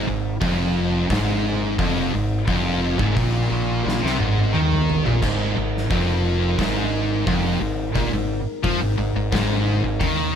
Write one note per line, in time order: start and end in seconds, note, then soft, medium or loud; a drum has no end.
0.00 10.35 G#3 medium
0.00 10.35 D#4 medium
0.00 10.35 A#4 medium
0.08 0.41 G#1 medium
0.08 0.36 G#2 medium
0.42 1.07 F1 loud
0.42 1.10 F2 loud
0.42 kick loud
0.42 open hi-hat medium
1.10 1.75 G#1 medium
1.10 1.79 G#2 loud
1.10 kick loud
1.10 snare loud
1.10 open hi-hat medium
1.79 2.11 F1 loud
1.79 2.13 F2 loud
1.79 kick loud
1.79 open hi-hat medium
2.14 2.46 G#1 medium
2.14 2.42 G#2 medium
2.48 2.96 F1 loud
2.48 2.99 F2 loud
2.48 kick loud
2.48 open hi-hat medium
2.99 3.16 G#1 loud
2.99 3.16 G#2 loud
2.99 kick loud
3.16 3.49 A#1 loud
3.16 3.49 A#2 loud
3.16 kick loud
3.16 open hi-hat medium
3.50 3.83 A#1 medium
3.50 3.84 A#2 loud
3.85 4.02 A#1 medium
3.85 4.01 A#2 loud
3.85 snare medium
4.03 4.19 C2 medium
4.03 4.19 C3 loud
4.03 snare medium
4.19 4.52 G#1 loud
4.19 4.52 G#2 loud
4.19 high tom medium
4.38 high tom medium
4.53 5.02 D#2 medium
4.53 5.04 D#3 loud
4.53 mid tom medium
4.73 mid tom medium
4.90 floor tom medium
5.06 5.22 A#1 medium
5.06 5.21 A#2 medium
5.06 floor tom medium
5.22 5.55 G#1 loud
5.22 5.54 G#2 loud
5.22 kick loud
5.22 splash medium
5.22 crash loud
5.55 5.89 G#1 medium
5.55 5.83 G#2 medium
5.77 snare soft
5.89 6.55 F1 medium
5.89 6.57 F2 medium
5.89 kick loud
5.89 open hi-hat medium
6.58 7.23 G#1 loud
6.58 7.26 G#2 loud
6.58 kick loud
6.58 snare loud
6.58 open hi-hat medium
7.27 7.59 F1 loud
7.27 7.60 F2 loud
7.27 kick loud
7.27 open hi-hat medium
7.61 7.93 G#1 medium
7.61 7.89 G#2 medium
7.95 8.12 A#1 loud
7.95 8.12 A#2 loud
7.95 kick loud
7.95 open hi-hat medium
8.12 8.45 G#1 medium
8.12 8.40 G#2 medium
8.63 8.80 F2 medium
8.63 8.80 F3 loud
8.63 kick loud
8.63 open hi-hat medium
8.81 8.97 G#1 medium
8.81 8.96 G#2 medium
8.97 9.14 G#1 medium
8.97 9.14 G#2 medium
9.16 9.32 G#1 medium
9.16 9.31 G#2 medium
9.32 9.80 G#1 medium
9.32 9.82 G#2 loud
9.32 kick loud
9.32 snare loud
9.32 open hi-hat medium
9.83 10.00 G#1 medium
9.83 10.01 G#2 medium
10.01 10.35 D#2 medium
10.01 10.35 D#3 loud
10.01 kick loud
10.01 open hi-hat medium